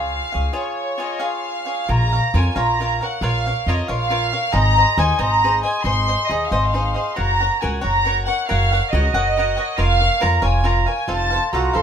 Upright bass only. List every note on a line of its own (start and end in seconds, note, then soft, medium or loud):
0.00 0.19 C#2 medium
0.35 0.48 C#2 medium
1.89 2.19 A#1 medium
2.34 2.48 F2 loud
2.56 2.99 A#1 medium
3.21 3.51 A#1 medium
3.67 3.80 F2 loud
3.89 4.31 A#1 medium
4.54 4.82 G#1 loud
4.97 5.11 D#2 loud
5.19 5.61 G#1 medium
5.84 6.13 G#1 medium
6.30 6.43 D#2 medium
6.51 6.95 G#1 medium
7.18 7.47 F#1 medium
7.64 7.77 C#2 medium
7.84 8.27 F#1 medium
8.51 8.79 F#1 medium
8.93 9.07 C#2 loud
9.14 9.56 F#1 medium
9.78 10.07 F1 medium
10.23 10.36 F2 medium
10.42 10.85 F1 medium
11.08 11.37 F1 medium
11.53 11.67 C2 medium
11.76 11.82 F1 medium